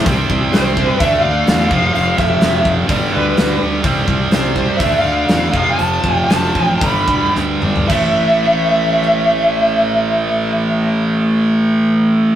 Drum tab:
CC |----------------|----------------|----------------|----------------|
HH |o---o---o---o---|o---o---o---o---|o---o---o---o---|o---o---o-------|
SD |----o-------o---|--o-o-------o---|----o-------o---|----o-------o---|
T2 |----------------|----------------|----------------|--------------o-|
FT |----------------|----------------|----------------|---------------o|
BD |o-o---o-o-----o-|--o---o-o-------|o-o---o-o-----o-|--o---o-o-o-----|

CC |x---------------|----------------|
HH |----------------|----------------|
SD |--------r-------|----------------|
T2 |----------------|----------------|
FT |----------------|----------------|
BD |o---------------|----------------|